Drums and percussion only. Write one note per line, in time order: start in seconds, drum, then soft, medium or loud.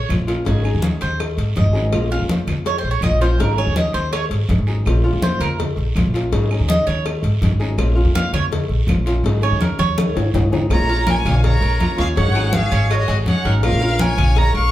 0.10 cowbell medium
0.10 high conga medium
0.10 short guiro medium
0.10 claves medium
0.28 cowbell medium
0.28 high conga soft
0.28 short guiro medium
0.46 cowbell loud
0.46 high conga soft
0.46 long guiro medium
0.65 high conga soft
0.65 claves medium
0.82 cowbell medium
0.82 high conga medium
0.82 short guiro medium
1.01 cowbell medium
1.01 high conga soft
1.01 short guiro medium
1.20 cowbell loud
1.20 high conga soft
1.20 long guiro medium
1.20 claves medium
1.38 cowbell medium
1.38 high conga soft
1.56 cowbell medium
1.56 high conga medium
1.56 short guiro medium
1.75 high conga soft
1.75 short guiro medium
1.93 cowbell loud
1.93 high conga soft
1.93 long guiro medium
1.93 claves medium
2.11 high conga soft
2.29 cowbell medium
2.29 high conga medium
2.29 short guiro medium
2.47 cowbell medium
2.47 high conga soft
2.47 low conga medium
2.47 short guiro medium
2.47 claves medium
2.66 cowbell loud
2.66 high conga soft
2.66 long guiro medium
2.85 high conga soft
3.02 cowbell medium
3.02 high conga medium
3.02 short guiro medium
3.02 claves medium
3.21 cowbell medium
3.21 high conga soft
3.21 short guiro medium
3.39 cowbell loud
3.39 high conga soft
3.39 long guiro medium
3.58 high conga soft
3.58 claves medium
3.76 cowbell medium
3.76 high conga medium
3.76 short guiro medium
3.93 cowbell medium
3.93 high conga soft
3.93 short guiro medium
4.12 cowbell loud
4.12 high conga soft
4.12 long guiro medium
4.12 claves medium
4.31 cowbell medium
4.31 high conga soft
4.49 cowbell medium
4.49 high conga medium
4.49 short guiro medium
4.67 high conga soft
4.67 short guiro medium
4.85 cowbell loud
4.85 high conga soft
4.85 long guiro medium
4.85 claves medium
5.05 high conga soft
5.22 cowbell medium
5.22 high conga medium
5.22 short guiro medium
5.41 cowbell medium
5.41 high conga soft
5.41 low conga medium
5.41 short guiro medium
5.41 claves medium
5.59 cowbell loud
5.59 high conga soft
5.59 low conga medium
5.59 long guiro medium
5.79 high conga soft
5.96 cowbell medium
5.96 high conga medium
5.96 short guiro medium
5.96 claves medium
6.14 cowbell medium
6.14 high conga soft
6.14 short guiro medium
6.33 cowbell loud
6.33 high conga soft
6.33 long guiro medium
6.51 high conga soft
6.51 claves medium
6.69 cowbell medium
6.69 high conga medium
6.69 short guiro medium
6.87 cowbell medium
6.87 high conga soft
6.87 short guiro medium
7.06 cowbell loud
7.06 high conga soft
7.06 long guiro medium
7.06 claves medium
7.24 cowbell medium
7.24 high conga soft
7.42 cowbell medium
7.42 high conga medium
7.42 short guiro medium
7.61 high conga soft
7.61 short guiro medium
7.78 cowbell loud
7.78 high conga soft
7.78 long guiro medium
7.78 claves medium
7.98 high conga soft
8.15 cowbell medium
8.15 high conga medium
8.15 short guiro medium
8.34 cowbell medium
8.34 high conga soft
8.34 low conga medium
8.34 short guiro medium
8.34 claves medium
8.51 cowbell loud
8.51 high conga soft
8.51 low conga medium
8.51 long guiro medium
8.69 high conga soft
8.88 cowbell medium
8.88 high conga medium
8.88 short guiro medium
8.88 claves medium
9.06 cowbell medium
9.06 high conga soft
9.06 short guiro medium
9.24 cowbell loud
9.24 high conga soft
9.24 long guiro medium
9.42 high conga soft
9.42 claves medium
9.61 cowbell medium
9.61 high conga loud
9.61 short guiro medium
9.79 cowbell medium
9.79 high conga medium
9.79 short guiro medium
9.98 cowbell loud
9.98 high bongo medium
9.98 high conga medium
9.98 long guiro medium
9.98 claves medium
10.17 cowbell medium
10.17 low bongo loud
10.34 cowbell medium
10.34 low bongo loud
10.34 low conga medium
10.34 short guiro medium
10.53 low bongo loud
10.53 low conga medium
10.53 short guiro medium
10.70 cowbell loud
10.70 high conga soft
10.70 long guiro medium
10.70 claves medium
10.89 high conga soft
11.07 cowbell medium
11.07 high conga loud
11.07 short guiro medium
11.26 cowbell medium
11.26 high conga soft
11.26 low conga medium
11.26 short guiro medium
11.26 claves medium
11.44 cowbell loud
11.44 high conga soft
11.44 low conga medium
11.44 long guiro medium
11.62 high conga soft
11.80 cowbell medium
11.80 high conga medium
11.80 short guiro medium
11.80 claves medium
11.98 cowbell medium
11.98 high conga soft
11.98 short guiro medium
12.17 cowbell loud
12.17 high conga soft
12.35 high conga soft
12.35 claves medium
12.53 cowbell medium
12.53 high conga loud
12.53 short guiro medium
12.72 cowbell medium
12.72 high conga soft
12.72 short guiro medium
12.90 cowbell loud
12.90 high conga soft
12.90 long guiro medium
12.90 claves medium
13.09 cowbell medium
13.09 high conga soft
13.26 cowbell medium
13.26 high conga medium
13.26 short guiro medium
13.45 high conga soft
13.45 short guiro medium
13.63 cowbell loud
13.63 high conga soft
13.63 long guiro medium
13.63 claves medium
13.82 high conga soft
13.99 cowbell medium
13.99 high conga medium
13.99 short guiro medium
14.17 cowbell medium
14.17 high conga soft
14.17 low conga medium
14.17 short guiro medium
14.17 claves medium
14.36 cowbell loud
14.36 high conga soft
14.36 low conga medium
14.36 long guiro medium
14.54 high conga soft